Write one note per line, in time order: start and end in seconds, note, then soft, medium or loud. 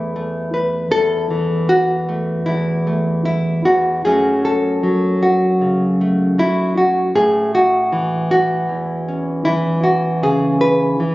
0.00 0.90 E2 medium
0.00 1.29 E3 medium
0.00 0.15 A3 soft
0.00 0.53 E4 medium
0.16 2.07 A3 soft
0.54 0.87 B4 soft
0.91 2.45 E2 medium
0.91 2.46 A4 loud
1.31 4.05 E3 medium
1.69 3.64 F#4 loud
2.09 2.86 A3 soft
2.46 3.65 E2 medium
2.46 3.24 E4 medium
2.87 4.05 A3 soft
3.25 3.65 E4 medium
3.65 4.04 E2 medium
3.65 4.05 F#4 medium
4.05 7.11 F#2 medium
4.05 4.83 F#3 soft
4.05 6.00 A3 medium
4.05 9.07 C#4 soft
4.05 4.44 G#4 medium
4.45 5.22 A4 medium
4.83 6.37 F#3 medium
5.23 6.39 F#4 medium
5.61 6.39 C#3 medium
6.01 9.07 A3 soft
6.38 7.11 F#3 medium
6.38 6.77 E4 medium
6.78 7.15 F#4 medium
7.15 8.68 A2 medium
7.15 7.54 G#4 medium
7.55 8.30 F#4 medium
7.92 9.46 E3 medium
8.31 9.45 F#4 medium
8.69 10.23 E2 medium
9.08 10.64 C#4 soft
9.45 11.00 E3 medium
9.45 9.83 E4 medium
9.84 10.22 F#4 medium
10.23 11.00 C#3 medium
10.23 10.61 G#4 medium
10.61 11.15 B4 medium
11.00 11.15 E3 medium